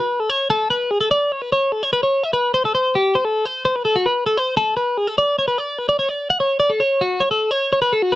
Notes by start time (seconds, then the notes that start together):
0.00 B4
0.20 A4
0.30 C#5
0.50 A4
0.70 B4
0.91 G#4
1.01 A4
1.11 D5
1.32 C#5
1.42 B4
1.52 C#5
1.72 A4
1.83 C#5
1.93 B4
2.03 C#5
2.24 E5
2.33 B4
2.54 C5
2.65 A4
2.75 C5
2.95 G4
3.15 C5
3.25 A4
3.45 C5
3.65 C5
3.76 B4
3.85 A4
3.96 F#4
4.06 B4
4.26 A4
4.37 C5
4.57 A4
4.77 B4
4.97 G#4
5.07 A4
5.18 D5
5.39 C#5
5.48 B4
5.58 D5
5.79 B4
5.89 D5
5.99 C#5
6.09 D5
6.30 F#5
6.40 C#5
6.60 D5
6.70 A4
6.80 C#5
7.01 F#4
7.20 C#5
7.31 A4
7.51 C#5
7.73 C#5
7.82 B4
7.93 A4
8.02 F#4
8.12 B4